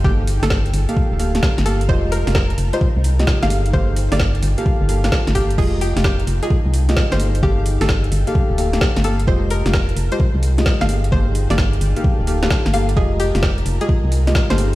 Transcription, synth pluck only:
X:1
M:4/4
L:1/16
Q:"Swing 16ths" 1/4=130
K:Gphr
V:1 name="Synth pluck"
G z2 =A z8 z2 A z | c z B z B z2 c z4 z f z2 | c z2 d z8 z2 G z | A z G z G z2 A z4 z c z2 |
G z2 =A z8 z2 A z | c z B z B z2 c z4 z f z2 | c z2 d z8 z2 f z | A z G z G z2 A z4 z c z2 |]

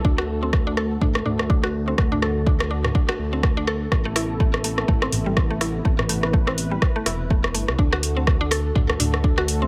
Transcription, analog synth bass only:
X:1
M:4/4
L:1/16
Q:"Swing 16ths" 1/4=124
K:Dmix
V:1 name="Analog synth bass" clef=bass
D,,8 D,, z D,,6 | D,,8 z2 D,,6 | A,,,8 A,,, z A,,,6 | A,,,8 z2 E,,,4 G,,, C,, |
D,,8 D,, z D,,6 |]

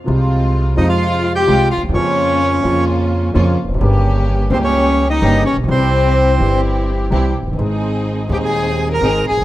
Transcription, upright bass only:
X:1
M:4/4
L:1/16
Q:1/4=127
K:Fm
V:1 name="Upright bass" clef=bass
C,,4- C,,3/2 z/2 F,,4- F,,3/2 z/2 C,,3/2 z =D,,/2 E,,/2 =E,,/2 | F,,4- F,,3/2 z/2 F,,4- F,,3/2 z/2 F,,3/2 z =E,,,/2 F,,,/2 _G,,,/2 | G,,,4- G,,,3/2 z/2 D,,4- D,,3/2 z/2 G,,,3/2 z =A,,,/2 B,,,/2 =B,,,/2 | C,,4- C,,3/2 z/2 G,,,4- G,,,3/2 z/2 C,,3/2 z F,,,/2 _G,,,/2 =G,,,/2 |
A,,,4- A,,,3/2 z/2 E,,4- E,,3/2 z/2 A,,,3/2 z G,,,/2 A,,,/2 z/2 |]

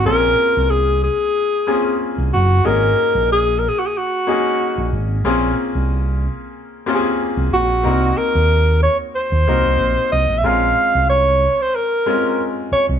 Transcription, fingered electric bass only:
X:1
M:4/4
L:1/16
Q:"Swing 16ths" 1/4=92
K:Bbm
V:1 name="Fingered electric bass" clef=bass
B,,,2 z C,,4 z6 C,, G,,,2 | A,,,2 z B,,,4 z6 B,,, A,,,2 | B,,,2 z C,,4 z6 C,, B,,,2 | C,,2 z E,,4 z2 E,, C,, C,, B,,, z C,, B,,, |
B,,,2 z C,,4 z8 C,, |]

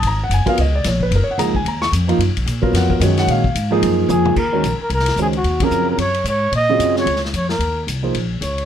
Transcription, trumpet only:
X:1
M:4/4
L:1/8
Q:"Swing" 1/4=222
K:G#dor
V:1 name="Trumpet"
z8 | z8 | z8 | z6 G2 |
[K:Ebdor] B3 B B2 A G- | G B2 B d2 d2 | e3 d2 z d B- | B2 z4 d2 |]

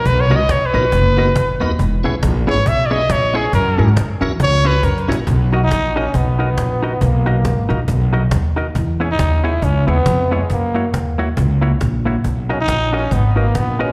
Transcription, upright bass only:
X:1
M:4/4
L:1/8
Q:"Swing" 1/4=138
K:B
V:1 name="Upright bass" clef=bass
B,,, C,, B,,, A,,, F,,,2 A,,, D,, | E,,, B,,, A,,, G,,, B,,,2 A,,,2 | F,, G,, F,, E,, C,,2 F,, A,,, | B,,,2 A,,,2 B,,,2 A,,,2 |
B,,,2 G,,, A,,, B,,,2 D,,2 | E,,2 D,,2 C,, D,, ^E,,2 | F,,2 D,,2 C,,2 A,,,2 | B,,,2 A,,,2 G,,,2 A,,,2 |]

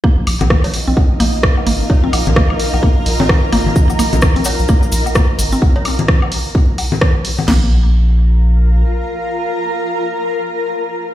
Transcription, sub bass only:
X:1
M:4/4
L:1/16
Q:"Swing 16ths" 1/4=129
K:Cphr
V:1 name="Sub bass" clef=bass
z B,,, B,,, B,,, z B,,, z B,,, z2 B,,, z3 A,,, z | z B,,, B,,, B,,, z B,,, z B,,, z2 B,,, z3 A,,, z | z B,,, B,,, B,,, z B,,, z B,,, z2 B,,, z3 A,,, z | z16 |
B,,,12 z4 | z16 |]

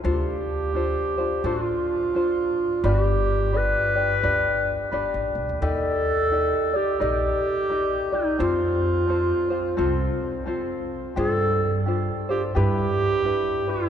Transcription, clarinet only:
X:1
M:4/4
L:1/8
Q:"Swing" 1/4=86
K:Gmix
V:1 name="Clarinet"
G4 F4 | G2 B4 z2 | A3 G G3 _E | F6 z2 |
A2 z G G3 E |]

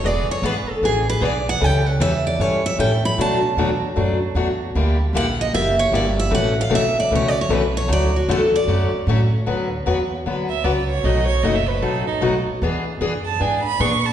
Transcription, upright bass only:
X:1
M:4/4
L:1/8
Q:"Swing" 1/4=153
K:D
V:1 name="Upright bass" clef=bass
E,,, z ^G,,, z A,,,2 B,,,2 | C,,2 E,,2 G,,2 A,,2 | B,,2 E,,2 F,,2 E,,2 | D,,2 _B,,,2 F,,,2 G,,,2 |
A,,,2 B,,,2 C,,2 B,,,2 | D,,2 E,,2 F,, z A,,2 | D,,2 E,,2 D,,2 C,,2 | B,,,2 F,,,2 A,,,2 B,,, z |
E,,2 F,,2 ^G,,2 _B,,2 |]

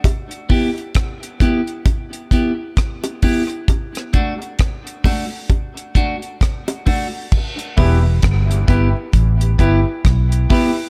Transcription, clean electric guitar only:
X:1
M:4/4
L:1/8
Q:"Swing 16ths" 1/4=66
K:Em
V:1 name="Clean electric guitar"
z [B,EG] z [B,EG] z [B,EG] z [B,EG] | z [A,DF] z [A,DF] z [A,DF] z [A,DF] | z [B,EG] z [B,EG] z [B,EG] z [B,EG] |]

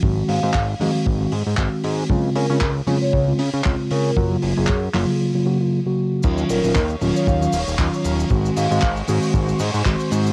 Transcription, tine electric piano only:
X:1
M:4/4
L:1/16
Q:"Swing 16ths" 1/4=116
K:Ebdor
V:1 name="Tine electric piano"
[E,A,CG]3 [E,A,CG] z2 [E,A,CG]3 [E,A,CG] z2 [E,A,CG]4 | [D,A,CF]3 [D,A,CF] z2 [D,A,CF]3 [D,A,CF] z2 [D,A,CF]4 | [D,G,B,F]3 [D,G,B,F] z2 [D,G,B,F]3 [D,G,B,F] [D,G,B,G] [D,G,B,F] z [D,G,B,G]3 | [E,G,DF]3 [E,G,DF] z2 [E,G,DF]3 [E,G,DF] z2 [E,G,DF]4 |
[E,A,CG]3 [E,A,CG] z2 [E,A,CG]3 [E,A,CG] z2 [E,A,CG]4 |]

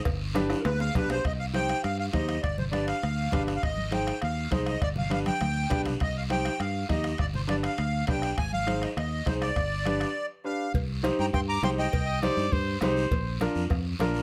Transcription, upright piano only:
X:1
M:4/4
L:1/8
Q:1/4=202
K:Gphr
V:1 name="Upright piano"
z2 [DG=B] z3 [DGB] z | z2 [EGc] z3 [EGc] z | z2 [DG=B] z3 [DGB] z | z2 [EAc] z3 [EAc] z |
z2 [DG=B] z3 [DGB] z | z2 [EGc] z3 [EGe] z | z2 [DG=B] z3 [DGB] z | z2 [EAc] z3 [EAc] z |
z2 [DG=B] z3 [DGB] z | [K:Cm] z2 [EGc] z3 [EGc] z | z2 [EGc] z3 [EGc] z | z2 [DFB] z3 [DFB] z |]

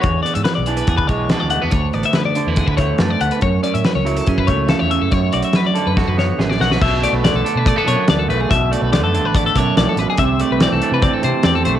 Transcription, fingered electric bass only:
X:1
M:4/4
L:1/16
Q:1/4=142
K:Dlyd
V:1 name="Fingered electric bass" clef=bass
E,,2 z G,, z B,,,3 E,,2 B,,,3 D,,2 E,, | D,,2 A,,, z D,3 E,,2 D,,3 F,,2 D,, z | F,,2 z A,, z C,,3 F,,2 C,,3 E,,2 F,, | F,,2 B,,, z F,3 F,,2 F,,3 A,,,2 B,,,2 |
B,,,3 B,,,2 B,,, z B,,2 z B,, z D,,2 B,,,2 | B,,,3 B,,,2 F,,2 A,,,3 B,,2 B,,, z A,,, z | =C,,3 C,,2 C,, z =C,2 z C, z E,,2 B,,,2 |]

